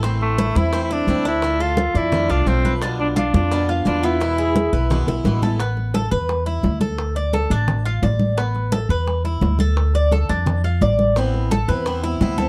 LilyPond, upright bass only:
\new Staff \with { instrumentName = "Upright bass" } { \clef bass \time 4/4 \key e \phrygian \tempo 4 = 173 a,,4. e,4. d,4~ | d,4. f,4 c,8 b,,4~ | b,,4. f,4. e,4~ | e,4. b,,4 b,,8 a,,4~ |
\key a \minor a,,4. e,4. d,4~ | d,4. a,,4. a,,4~ | a,,4. e,4. d,4~ | d,4. f,4. a,,4~ |
a,,4. e,4. d,4 | }